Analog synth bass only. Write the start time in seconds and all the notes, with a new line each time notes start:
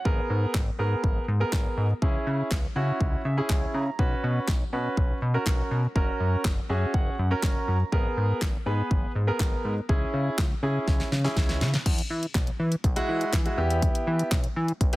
0.05 G#1
0.30 G#2
0.55 G#1
0.79 G#2
1.04 G#1
1.28 G#2
1.53 G#1
1.77 G#2
2.02 C#2
2.27 C#3
2.51 C#2
2.76 C#3
3.01 C#2
3.25 C#3
3.50 C#2
3.74 C#3
3.99 B1
4.24 B2
4.48 B1
4.73 B2
4.97 B1
5.22 B2
5.46 B1
5.71 B2
5.96 F#1
6.20 F#2
6.45 F#1
6.69 F#2
6.94 F#1
7.19 F#2
7.43 F#1
7.68 F#2
7.92 G#1
8.17 G#2
8.42 G#1
8.66 G#2
8.91 G#1
9.15 G#2
9.40 G#1
9.65 G#2
9.89 C#2
10.14 C#3
10.38 C#2
10.63 C#3
10.88 C#2
11.12 C#3
11.37 C#2
11.61 C#3
11.86 E2
12.10 E3
12.35 B1
12.60 E3
12.84 B1
13.09 E3
13.33 E3
13.58 E2
14.07 E3
14.32 B1
14.56 E3
14.81 B1